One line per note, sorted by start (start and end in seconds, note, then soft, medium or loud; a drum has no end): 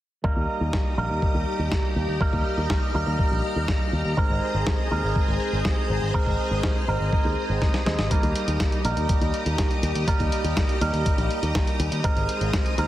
0.24 0.95 G3 medium
0.24 0.95 A#3 medium
0.24 0.95 D#4 medium
0.24 4.14 G4 medium
0.24 0.95 A#4 medium
0.24 4.14 D#5 medium
0.24 8.07 A#5 medium
0.24 2.19 D#6 medium
0.24 kick loud
0.36 0.45 D#2 medium
0.61 0.70 D#2 medium
0.73 kick loud
0.73 snare loud
0.98 1.06 A#1 medium
0.98 2.18 G3 medium
0.98 2.18 A#3 medium
0.98 2.18 D#4 medium
0.98 2.18 A#4 medium
1.10 1.19 D#2 medium
1.22 kick loud
1.34 1.43 D#2 medium
1.59 1.68 D#2 medium
1.72 kick loud
1.72 snare loud
1.96 2.05 D#2 medium
2.08 2.17 D#2 medium
2.20 2.92 G3 medium
2.20 2.92 A#3 medium
2.20 2.91 D#4 medium
2.20 2.92 A#4 medium
2.20 4.15 F6 medium
2.20 kick loud
2.33 2.42 D#2 medium
2.33 kick medium
2.58 2.66 D#2 medium
2.70 kick loud
2.70 snare loud
2.94 3.03 D#2 medium
2.94 4.14 G3 medium
2.94 4.14 A#3 medium
2.94 4.14 D#4 medium
2.94 4.14 A#4 medium
3.07 3.15 D#2 medium
3.19 kick loud
3.31 3.40 A#1 medium
3.56 3.65 D#2 medium
3.68 kick loud
3.68 snare loud
3.93 4.01 D#2 medium
4.05 4.14 D#2 medium
4.17 4.88 G#3 medium
4.17 4.88 C4 medium
4.17 4.88 D#4 medium
4.17 8.07 G#4 medium
4.17 4.88 A#4 medium
4.17 8.07 C5 medium
4.17 8.07 D#6 medium
4.17 kick loud
4.30 4.38 G#1 medium
4.54 4.63 G#1 medium
4.67 kick loud
4.67 snare loud
4.91 5.00 D#2 medium
4.91 6.11 G#3 medium
4.91 6.11 C4 medium
4.91 6.11 D#4 medium
4.91 6.11 A#4 medium
5.04 5.12 G#1 medium
5.16 kick loud
5.28 5.37 G#1 medium
5.53 5.61 G#1 medium
5.65 kick loud
5.65 snare loud
5.90 5.98 G#1 medium
6.02 6.11 G#1 medium
6.14 6.85 G#3 medium
6.14 6.85 C4 medium
6.14 6.85 D#4 medium
6.14 6.85 A#4 medium
6.14 kick loud
6.26 6.35 G#1 medium
6.26 kick medium
6.51 6.60 G#1 medium
6.63 kick loud
6.63 snare loud
6.88 6.97 G#1 medium
6.88 7.84 G#3 medium
6.88 7.84 C4 medium
6.88 7.84 D#4 medium
6.88 7.84 A#4 medium
7.00 7.09 G#1 medium
7.13 kick loud
7.25 7.33 D#2 medium
7.49 7.58 G#1 medium
7.62 kick loud
7.62 snare medium
7.74 snare medium
7.86 7.95 D#2 medium
7.86 8.08 G#3 medium
7.86 8.08 C4 medium
7.86 8.08 D#4 medium
7.86 8.08 D#5 medium
7.86 snare medium
7.99 8.07 G#1 medium
7.99 snare medium
8.10 8.82 G3 medium
8.10 8.82 A#3 medium
8.10 8.82 D#4 medium
8.10 12.01 G4 medium
8.10 8.82 A#4 loud
8.10 12.00 D#5 medium
8.10 12.87 A#5 medium
8.10 12.87 D#6 medium
8.10 kick loud
8.10 closed hi-hat medium
8.23 8.32 D#2 medium
8.23 closed hi-hat soft
8.36 closed hi-hat medium
8.48 8.56 D#2 medium
8.48 closed hi-hat soft
8.60 kick loud
8.60 snare loud
8.60 closed hi-hat medium
8.72 closed hi-hat soft
8.85 8.93 A#1 medium
8.85 10.05 G3 medium
8.85 10.05 A#3 medium
8.85 10.05 D#4 medium
8.85 10.05 A#4 medium
8.85 closed hi-hat medium
8.97 9.05 D#2 medium
8.97 closed hi-hat soft
9.09 kick loud
9.09 closed hi-hat medium
9.21 9.30 D#2 medium
9.21 closed hi-hat soft
9.34 closed hi-hat soft
9.46 9.55 D#2 medium
9.46 closed hi-hat soft
9.58 kick loud
9.58 snare loud
9.58 closed hi-hat medium
9.71 closed hi-hat soft
9.83 9.92 D#2 medium
9.83 closed hi-hat medium
9.95 10.04 D#2 medium
9.95 closed hi-hat soft
10.07 10.78 G3 medium
10.07 10.78 A#3 medium
10.07 10.78 D#4 medium
10.07 10.78 A#4 loud
10.07 kick loud
10.07 closed hi-hat medium
10.20 10.28 D#2 medium
10.20 kick medium
10.20 closed hi-hat soft
10.32 closed hi-hat medium
10.44 10.53 D#2 medium
10.44 closed hi-hat soft
10.57 kick loud
10.57 snare loud
10.57 closed hi-hat medium
10.69 closed hi-hat soft
10.81 10.90 D#2 medium
10.81 12.01 G3 medium
10.81 12.01 A#3 medium
10.81 12.01 D#4 medium
10.81 12.01 A#4 medium
10.81 closed hi-hat medium
10.93 11.02 D#2 medium
10.93 closed hi-hat soft
11.06 kick loud
11.06 closed hi-hat medium
11.18 11.27 A#1 medium
11.18 closed hi-hat soft
11.31 closed hi-hat soft
11.43 11.51 D#2 medium
11.43 closed hi-hat soft
11.55 kick loud
11.55 snare loud
11.55 closed hi-hat medium
11.67 closed hi-hat soft
11.79 11.88 D#2 medium
11.79 closed hi-hat medium
11.92 12.01 D#2 medium
11.92 closed hi-hat soft
12.04 12.75 G#3 medium
12.04 12.75 C4 medium
12.04 12.75 D#4 medium
12.04 12.87 G#4 medium
12.04 12.75 A#4 loud
12.04 12.87 C5 medium
12.04 kick loud
12.04 closed hi-hat medium
12.16 12.25 G#1 medium
12.16 closed hi-hat soft
12.29 closed hi-hat medium
12.41 12.50 G#1 medium
12.41 closed hi-hat soft
12.53 kick loud
12.53 snare loud
12.53 closed hi-hat medium
12.66 closed hi-hat soft
12.77 12.87 D#2 medium
12.77 12.87 G#3 medium
12.77 12.87 C4 medium
12.77 12.87 D#4 medium
12.77 12.87 A#4 medium
12.77 closed hi-hat medium